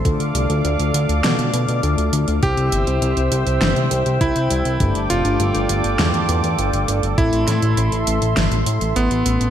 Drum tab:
HH |xxxxxxxxxxxxxxxx|xxxxxxxxxxxxxxxx|xxxxxxxxxxxxxxxx|xxxxxxxxxxxxxxxx|
SD |--------o-------|--------o-------|--------o-------|--o-----o-------|
BD |o---------------|o-----------o---|o---------------|o---------------|